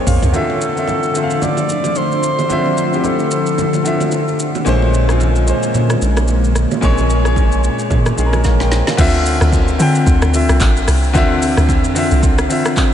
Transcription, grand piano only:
0.00 0.36 A#2 loud
0.00 0.36 G#3 medium
0.00 0.36 C#4 medium
0.00 0.20 C5 medium
0.00 0.36 C#5 loud
0.00 0.35 G5 medium
0.00 0.35 G#5 medium
0.00 0.35 A#5 medium
0.00 0.35 C6 medium
0.07 0.32 F5 medium
0.32 0.66 D3 medium
0.32 0.67 C4 medium
0.32 0.68 F4 medium
0.32 0.68 E5 loud
0.75 1.07 D3 medium
0.75 1.08 C4 medium
0.75 1.09 F4 medium
0.75 1.09 E5 medium
1.14 2.02 D3 medium
1.14 2.02 C4 medium
1.14 2.03 F4 medium
1.14 1.24 E5 medium
1.24 2.07 F5 medium
2.49 2.83 D3 medium
2.49 2.83 C4 medium
2.49 2.84 F4 medium
2.49 2.84 E5 loud
2.91 3.67 D3 medium
2.91 3.67 C4 medium
2.91 2.99 E4 medium
2.91 3.69 G4 medium
3.00 3.71 F4 medium
3.84 4.51 D3 medium
3.84 4.52 C4 medium
3.84 4.52 F4 medium
3.84 4.53 E5 medium
4.65 4.99 A#2 loud
4.65 4.99 G#3 loud
4.65 5.00 C#4 loud
4.65 5.01 C5 loud
5.07 5.40 A#2 medium
5.07 5.40 G#3 medium
5.07 5.41 C#4 medium
5.07 5.42 F4 medium
5.46 6.34 A#2 medium
5.46 6.35 G#3 medium
5.46 6.35 C#4 medium
5.46 6.36 C5 medium
6.81 7.15 A#2 loud
6.81 7.16 G#3 loud
6.81 7.16 C#4 loud
6.81 7.17 C#5 loud
7.24 7.99 A#2 medium
7.24 8.00 G#3 medium
7.24 8.00 C#4 medium
7.24 8.01 C#5 loud
8.16 8.83 A#2 medium
8.16 8.84 G#3 medium
8.16 8.85 C#4 medium
8.16 8.26 G#4 medium
8.26 8.49 A#4 medium
8.45 8.60 G#4 medium
8.45 8.60 F5 medium
8.61 8.72 A#4 medium
8.61 8.71 G5 medium
8.72 8.87 C5 medium
8.72 8.87 G#5 medium
8.88 9.13 G#4 medium
8.88 9.13 F5 medium
8.97 9.65 D3 loud
8.97 9.65 C4 loud
8.97 9.66 F4 loud
8.97 9.66 E5 loud
9.78 10.24 D3 medium
9.78 10.25 C4 medium
9.78 10.25 F4 medium
9.78 10.26 G5 loud
10.32 11.00 D3 medium
10.32 11.00 C4 medium
10.32 11.01 F4 medium
10.32 11.01 E5 loud
11.13 11.81 D3 loud
11.13 11.81 C4 loud
11.13 11.82 F4 loud
11.13 11.82 E5 loud
11.95 12.40 D3 loud
11.95 12.41 C4 medium
11.95 12.41 F4 medium
11.95 12.42 E5 loud
12.49 12.94 D3 medium
12.49 12.94 C4 medium
12.49 12.94 F4 medium
12.49 12.94 E5 loud

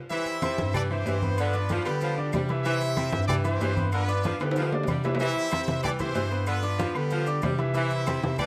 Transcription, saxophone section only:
0.11 0.28 E3 medium
0.43 0.59 C3 medium
0.75 0.92 E3 medium
1.06 1.23 E3 medium
1.39 1.55 D3 loud
1.71 1.87 F3 medium
2.02 2.18 F3 medium
2.34 2.50 G3 medium
2.65 2.82 E3 medium
2.97 3.14 C3 medium
3.29 3.45 E3 medium
3.60 3.77 E3 medium
3.92 4.09 D3 medium
4.25 4.42 F3 medium
4.57 4.73 F3 medium
4.88 5.05 G3 medium
5.19 5.36 E3 medium
5.52 5.68 C3 medium
5.83 6.00 E3 medium
6.14 6.31 E3 medium
6.46 6.63 D3 medium
6.78 6.95 F3 medium
7.11 7.28 F3 medium
7.44 7.60 G3 medium
7.75 7.92 E3 loud
8.07 8.24 C3 medium
8.39 8.46 E3 medium

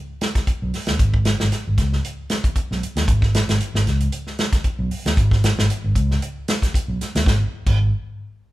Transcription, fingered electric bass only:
0.62 0.71 B1 medium
0.88 0.97 D#2 medium
1.00 1.31 G#1 loud
1.41 1.50 G#1 medium
1.67 1.76 G#1 medium
1.78 1.98 C#2 medium
2.71 2.80 B1 medium
2.82 muted fingered electric bass stroke soft
2.96 3.05 D#2 medium
3.08 3.40 G#1 loud
3.48 3.57 G#1 medium
3.74 3.84 G#1 medium
3.86 4.07 C#2 medium
4.79 4.88 B1 medium
4.91 muted fingered electric bass stroke soft
5.06 5.15 D#2 medium
5.17 5.49 G#1 loud
5.58 5.67 G#1 medium
5.84 5.93 G#1 medium
5.95 6.16 C#2 medium
6.88 6.97 B1 medium
7.01 muted fingered electric bass stroke soft
7.15 7.24 D#2 medium
7.26 7.41 G#1 medium
7.66 7.91 G#1 loud

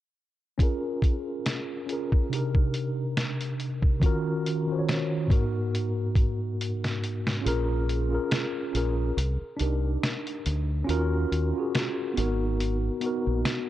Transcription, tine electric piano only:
0.58 1.37 C#4 loud
0.58 1.38 F4 loud
0.58 1.39 G#4 medium
0.63 1.40 A#4 loud
1.86 2.30 C#4 medium
1.86 2.31 F4 medium
1.86 2.32 G#4 medium
1.92 2.33 A#4 medium
2.29 3.68 C3 medium
2.29 3.69 D4 medium
2.29 3.70 D#4 medium
2.34 3.70 G4 medium
2.34 3.71 A#4 medium
4.00 4.40 D#3 loud
4.00 4.41 C#4 medium
4.00 4.41 F4 medium
4.04 4.42 F#4 loud
4.04 4.43 A#4 loud
4.66 5.29 D#3 medium
4.66 5.30 C#4 medium
4.66 5.31 F4 medium
4.71 5.30 F#4 medium
4.71 4.76 C5 medium
4.79 5.36 C#5 medium
5.27 6.67 G#2 medium
5.27 6.67 B3 medium
5.27 6.68 D#4 medium
5.32 6.69 F#4 medium
5.32 6.70 A#4 medium
7.41 7.82 C#4 medium
7.41 7.83 F4 loud
7.41 7.84 G#4 loud
7.48 7.85 A#4 loud
8.09 8.48 C#4 medium
8.09 8.49 F4 medium
8.13 8.50 G#4 medium
8.13 8.51 A#4 medium
8.71 9.15 C#4 medium
8.71 9.16 F4 medium
8.76 9.17 G#4 medium
8.76 9.18 A#4 medium
9.57 10.36 D4 medium
9.57 10.37 D#4 medium
9.61 10.38 G4 medium
9.61 10.39 A#4 medium
10.85 11.25 C#4 loud
10.85 11.26 F4 loud
10.89 11.28 F#4 loud
10.89 11.28 A#4 loud
11.53 12.16 C#4 medium
11.53 12.17 F4 medium
11.58 12.17 F#4 medium
11.58 12.19 G#4 medium
12.14 12.86 B3 medium
12.14 12.87 D#4 medium
12.18 12.88 F#4 medium
12.18 12.88 A#4 medium
13.00 13.69 B3 medium
13.00 13.69 D#4 medium
13.00 13.69 F#4 medium
13.06 13.69 A#4 medium

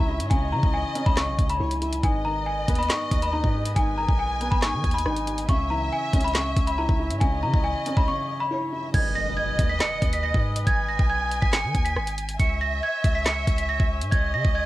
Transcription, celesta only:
0.30 0.47 G#5 medium
0.52 0.69 A#5 medium
0.74 1.04 G#5 medium
1.06 1.14 B5 medium
1.17 1.48 C#6 medium
1.50 2.00 B5 medium
2.04 2.20 G#5 medium
2.25 2.41 A#5 medium
2.46 2.77 G#5 medium
2.79 2.87 B5 medium
2.90 3.20 C#6 medium
3.23 3.31 B5 medium
3.33 3.49 A#5 medium
3.76 3.92 G#5 medium
3.98 4.14 A#5 medium
4.19 4.49 G#5 medium
4.51 4.59 B5 medium
4.62 4.93 C#6 medium
4.94 5.45 B5 medium
5.49 5.65 C#6 medium
5.70 5.87 A#5 medium
5.92 6.23 G#5 medium
6.24 6.32 B5 medium
6.35 6.65 C#6 medium
6.67 6.75 B5 medium
6.78 6.94 A#5 medium
7.21 7.37 G#5 medium
7.43 7.59 A#5 medium
7.64 7.95 G#5 medium
7.97 8.05 B5 medium
8.08 8.38 C#6 medium
8.40 8.91 B5 medium
8.94 9.11 G#6 medium
9.15 9.32 A#6 medium
9.37 9.67 G#6 medium
9.69 9.78 B6 medium
9.80 10.11 C#7 loud
10.13 10.21 B6 medium
10.23 10.40 A#6 medium
10.67 10.83 G#6 loud
10.88 11.05 A#6 medium
11.10 11.40 G#6 medium
11.42 11.50 B6 medium
11.53 11.83 C#7 medium
11.85 12.36 B6 medium
12.40 12.56 C#7 medium
12.61 12.77 A#6 medium
12.83 13.13 G#6 medium
13.15 13.23 B6 medium
13.26 13.56 C#7 medium
13.58 13.66 B6 medium
13.69 13.85 A#6 medium
14.11 14.28 G#6 medium
14.34 14.50 A#6 medium
14.55 14.66 G#6 medium

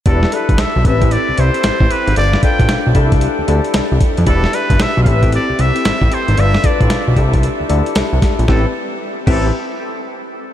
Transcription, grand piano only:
0.06 0.25 D4 medium
0.06 0.26 E4 medium
0.06 0.26 G4 medium
0.06 0.26 B4 medium
0.32 0.85 D4 medium
0.32 0.84 E4 medium
0.32 0.84 G4 medium
0.32 0.85 A4 medium
0.85 1.30 C4 medium
0.85 1.30 E4 medium
0.85 1.31 G4 medium
0.85 1.31 B4 medium
1.37 1.89 C4 medium
1.37 1.89 E4 medium
1.37 1.89 G4 medium
1.37 1.89 C5 medium
2.16 2.36 D4 medium
2.16 2.36 F4 medium
2.16 2.36 A4 medium
2.16 2.37 B4 medium
2.42 2.93 D4 medium
2.42 2.95 F4 medium
2.42 2.94 A4 medium
2.42 2.96 B4 medium
2.95 3.40 D4 medium
2.95 3.40 E4 medium
2.95 3.41 G4 medium
2.95 3.41 A4 medium
3.48 3.99 D4 medium
3.48 4.00 E4 medium
3.48 4.00 G4 medium
3.48 4.00 A4 medium
3.48 3.73 E5 medium
3.75 4.24 A5 medium
4.27 4.47 D4 medium
4.27 4.47 E4 medium
4.27 4.47 G4 medium
4.27 4.47 B4 medium
4.53 5.06 D4 medium
4.53 5.04 E4 medium
4.53 5.04 G4 medium
4.53 5.06 B4 medium
5.05 5.51 C4 medium
5.05 5.51 E4 medium
5.05 5.51 G4 medium
5.05 5.14 A4 medium
5.13 5.54 B4 medium
5.58 6.10 C4 medium
5.58 6.10 E4 medium
5.58 6.10 G4 medium
5.58 6.10 B4 medium
6.37 6.57 D4 medium
6.37 6.57 F4 medium
6.37 6.57 A4 medium
6.37 6.57 B4 medium
6.63 7.15 D4 medium
6.63 7.16 F4 medium
6.63 7.16 A4 medium
6.63 7.17 B4 medium
7.16 7.61 D4 medium
7.16 7.62 E4 medium
7.16 7.62 G4 medium
7.16 7.62 A4 medium
7.69 8.20 D4 medium
7.69 8.21 E4 medium
7.69 8.21 G4 medium
7.69 8.21 A4 medium
8.48 8.66 C4 medium
8.48 8.66 E4 medium
8.48 8.66 G4 medium
8.48 8.66 B4 medium
9.27 9.52 C4 medium
9.27 9.52 E4 medium
9.27 9.51 G4 medium
9.27 9.52 B4 medium

